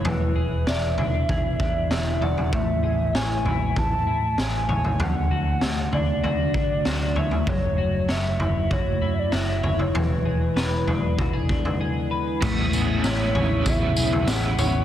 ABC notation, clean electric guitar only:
X:1
M:4/4
L:1/16
Q:1/4=97
K:Emix
V:1 name="Clean electric guitar"
E,2 G2 d2 D2 G2 D2 G2 d2 | A,2 G2 c2 E4 E2 G2 c2 | D,2 F4 D2 F2 D2 F2 c2 | F,2 F2 c2 E2 F2 E2 F2 c2 |
E,2 G2 B2 D2 F G D2 G2 B2 | A,2 G2 E2 c2 E2 G2 E2 c2 |]